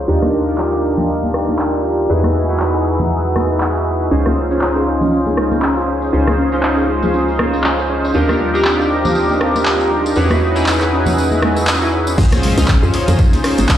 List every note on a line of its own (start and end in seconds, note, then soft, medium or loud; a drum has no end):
0.08 2.08 D#2 medium
0.08 0.44 D4 loud
0.08 0.44 D#4 medium
0.08 0.44 F4 medium
0.08 0.44 G4 medium
0.08 0.44 A#4 loud
0.08 2.08 D5 medium
0.08 2.08 F5 medium
0.08 2.08 G5 medium
0.22 cross-stick medium
0.22 high conga medium
0.47 2.07 D4 loud
0.47 2.07 D#4 medium
0.47 2.07 F4 medium
0.47 2.07 G4 medium
0.47 2.07 A#4 loud
0.58 clap loud
0.73 high bongo soft
0.98 high conga medium
0.98 low conga medium
1.24 high conga medium
1.34 cross-stick medium
1.49 high conga medium
1.59 clap loud
2.09 4.09 E2 medium
2.09 2.46 D#4 medium
2.09 2.46 E4 medium
2.09 2.46 F#4 medium
2.09 2.46 G#4 medium
2.09 2.46 B4 loud
2.09 4.09 F#5 medium
2.09 4.09 G#5 medium
2.09 4.09 D#6 medium
2.09 4.09 E6 medium
2.24 cross-stick medium
2.24 high conga medium
2.49 4.08 D#4 medium
2.49 4.09 E4 medium
2.49 4.09 F#4 medium
2.49 4.09 G#4 medium
2.49 4.09 B4 loud
2.49 high bongo soft
2.60 clap loud
2.75 high bongo soft
3.00 high conga medium
3.00 low conga medium
3.36 cross-stick medium
3.36 high conga medium
3.60 clap loud
4.11 6.11 C#2 medium
4.11 4.47 C#4 medium
4.11 4.17 C#4 medium
4.11 8.11 C#4 medium
4.11 4.47 D#4 medium
4.11 4.47 F4 medium
4.11 4.48 G#4 medium
4.11 4.48 C5 loud
4.11 10.12 F5 medium
4.11 8.11 C6 medium
4.11 8.11 D#6 medium
4.11 tambourine medium
4.25 4.28 F4 medium
4.25 cross-stick medium
4.25 tambourine soft
4.25 high conga medium
4.37 4.42 C#5 medium
4.50 6.10 C#4 medium
4.50 4.53 C#4 medium
4.50 6.10 D#4 medium
4.50 6.10 F4 medium
4.50 6.11 G#4 medium
4.50 6.11 C5 loud
4.50 tambourine medium
4.61 4.65 C#5 medium
4.61 clap loud
4.61 tambourine medium
4.76 4.79 G#4 medium
4.76 tambourine soft
4.76 high bongo medium
4.87 4.92 C#4 loud
5.01 5.07 C#4 loud
5.01 tambourine medium
5.01 high conga medium
5.01 low conga medium
5.12 5.18 C#4 medium
5.12 tambourine medium
5.26 5.31 G#4 medium
5.26 tambourine soft
5.26 high conga medium
5.37 5.43 G#3 medium
5.37 cross-stick medium
5.52 5.54 G#4 medium
5.52 tambourine medium
5.52 high conga medium
5.62 5.68 C#4 medium
5.62 clap loud
5.62 tambourine medium
5.77 5.79 F4 medium
5.77 tambourine soft
5.88 5.93 C#5 medium
6.02 6.05 C#4 medium
6.02 tambourine medium
6.13 8.13 C#2 medium
6.13 6.49 C#4 medium
6.13 6.49 D#4 medium
6.13 6.49 F4 medium
6.13 6.49 G#4 medium
6.13 6.49 C5 loud
6.13 6.16 C#5 medium
6.13 tambourine medium
6.27 6.30 G#4 medium
6.27 cross-stick medium
6.27 tambourine soft
6.27 high conga medium
6.38 6.44 C#4 loud
6.52 8.12 C#4 medium
6.52 6.59 C#4 loud
6.52 8.12 D#4 medium
6.52 8.12 F4 medium
6.52 8.12 G#4 medium
6.52 8.12 C5 loud
6.52 tambourine medium
6.52 high bongo soft
6.63 6.69 C#4 medium
6.63 clap loud
6.63 tambourine medium
6.77 6.82 G#4 medium
6.77 tambourine soft
6.77 high bongo soft
6.89 6.94 G#3 medium
7.03 7.06 G#4 medium
7.03 tambourine medium
7.03 high conga medium
7.03 low conga medium
7.14 7.19 C#4 medium
7.14 tambourine medium
7.28 7.31 F4 medium
7.28 tambourine soft
7.39 7.44 C#5 medium
7.39 cross-stick medium
7.39 high conga medium
7.53 7.56 C#4 medium
7.53 tambourine medium
7.64 7.68 C#5 medium
7.64 clap loud
7.64 tambourine medium
7.79 7.81 G#4 medium
7.79 tambourine soft
7.90 7.95 C#4 loud
8.04 8.10 C#4 loud
8.04 tambourine medium
8.14 10.14 D#2 medium
8.14 8.20 C4 medium
8.14 8.51 D4 medium
8.14 8.51 D#4 medium
8.14 8.51 F4 medium
8.14 8.51 G4 medium
8.14 8.51 A#4 loud
8.14 10.14 G5 medium
8.14 10.14 D6 medium
8.14 10.14 D#6 medium
8.14 tambourine medium
8.29 8.33 G4 medium
8.29 cross-stick medium
8.29 tambourine soft
8.29 high conga medium
8.40 8.45 G3 medium
8.54 10.13 D4 medium
8.54 10.14 D#4 medium
8.54 10.14 F4 medium
8.54 8.57 G4 medium
8.54 10.14 G4 medium
8.54 10.14 A#4 loud
8.54 tambourine medium
8.65 8.70 C4 medium
8.65 clap loud
8.65 tambourine medium
8.79 8.82 F4 medium
8.79 tambourine soft
8.79 high bongo medium
8.90 8.96 C5 medium
9.05 9.07 C4 medium
9.05 tambourine medium
9.05 high conga medium
9.05 low conga medium
9.15 9.19 C5 medium
9.15 tambourine medium
9.29 9.32 G4 medium
9.29 tambourine soft
9.29 high conga medium
9.41 9.46 C4 loud
9.41 cross-stick medium
9.55 9.61 C4 loud
9.55 tambourine medium
9.55 high conga medium
9.65 9.71 C4 medium
9.65 clap loud
9.65 tambourine medium
9.80 9.84 G4 medium
9.80 tambourine soft
9.91 9.96 G3 medium
10.05 10.08 G4 medium
10.05 tambourine medium
10.16 12.16 E2 medium
10.16 10.22 C#4 medium
10.16 10.52 D#4 loud
10.16 10.52 E4 medium
10.16 10.53 F#4 medium
10.16 10.53 G#4 medium
10.16 10.53 B4 loud
10.16 12.16 F#5 medium
10.16 12.16 G#5 medium
10.16 12.16 D#6 medium
10.16 12.16 E6 medium
10.16 tambourine medium
10.30 10.33 E4 medium
10.30 cross-stick medium
10.30 tambourine soft
10.30 high conga medium
10.42 10.47 C#5 medium
10.55 10.58 C#4 medium
10.55 11.79 D#4 loud
10.55 11.79 E4 medium
10.55 11.79 F#4 medium
10.55 11.79 G#4 medium
10.55 11.79 B4 loud
10.55 tambourine medium
10.55 high bongo soft
10.66 10.70 C#5 medium
10.66 clap loud
10.66 tambourine medium
10.81 10.84 G#4 medium
10.81 clap soft
10.81 tambourine soft
10.81 high bongo medium
10.92 10.97 C#4 loud
11.06 11.12 C#4 loud
11.06 tambourine medium
11.06 high conga medium
11.06 low conga medium
11.17 11.23 C#4 medium
11.17 tambourine medium
11.31 11.36 G#4 medium
11.31 tambourine soft
11.31 high conga medium
11.42 11.48 G#3 medium
11.42 cross-stick medium
11.42 high conga medium
11.56 11.59 G#4 medium
11.56 tambourine medium
11.67 11.73 C#4 medium
11.67 clap loud
11.67 tambourine medium
11.82 12.15 D#4 medium
11.82 12.15 E4 medium
11.82 11.84 E4 medium
11.82 12.15 F#4 medium
11.82 12.16 G#4 medium
11.82 12.16 B4 medium
11.82 tambourine soft
11.93 11.98 C#5 medium
12.07 12.10 C#4 medium
12.07 tambourine medium
12.18 12.28 C#2 loud
12.18 12.54 C#4 loud
12.18 12.23 C#4 medium
12.18 13.78 C#4 medium
12.18 12.54 D#4 medium
12.18 12.54 F4 medium
12.18 12.54 G#4 medium
12.18 12.54 C5 loud
12.18 13.78 F5 medium
12.18 13.78 C6 medium
12.18 13.78 D#6 medium
12.18 kick loud
12.18 crash loud
12.18 tambourine medium
12.18 impact medium
12.32 12.36 G#4 medium
12.32 cross-stick medium
12.32 snare soft
12.32 closed hi-hat medium
12.32 tambourine soft
12.32 high conga medium
12.43 12.49 G#3 medium
12.43 open hi-hat loud
12.43 tambourine medium
12.57 12.65 C#2 medium
12.57 13.78 C#4 loud
12.57 13.78 D#4 medium
12.57 13.78 F4 medium
12.57 12.60 G#4 medium
12.57 13.78 G#4 medium
12.57 13.78 C5 loud
12.57 snare soft
12.57 closed hi-hat medium
12.57 tambourine medium
12.68 12.74 C#4 medium
12.68 kick loud
12.68 snare loud
12.68 clap loud
12.68 tambourine medium
12.83 12.90 F2 medium
12.83 12.85 F4 medium
12.83 tambourine soft
12.94 12.99 C#5 medium
12.94 open hi-hat loud
12.94 tambourine medium
12.94 high bongo medium
13.08 13.15 F2 medium
13.08 13.11 C#4 medium
13.08 closed hi-hat medium
13.08 tambourine medium
13.08 high conga medium
13.08 low conga loud
13.19 13.22 C#5 medium
13.19 kick loud
13.19 tambourine medium
13.19 tambourine loud
13.33 13.36 G#4 medium
13.33 snare soft
13.33 closed hi-hat soft
13.33 tambourine soft
13.33 high conga medium
13.44 13.49 C#4 loud
13.44 cross-stick medium
13.44 open hi-hat loud
13.44 tambourine medium
13.58 13.66 G#1 medium
13.58 13.64 C#4 loud
13.58 closed hi-hat medium
13.58 tambourine medium
13.58 high conga medium
13.69 13.75 C#4 medium
13.69 kick loud
13.69 snare loud
13.69 clap loud
13.69 open hi-hat medium
13.69 tambourine medium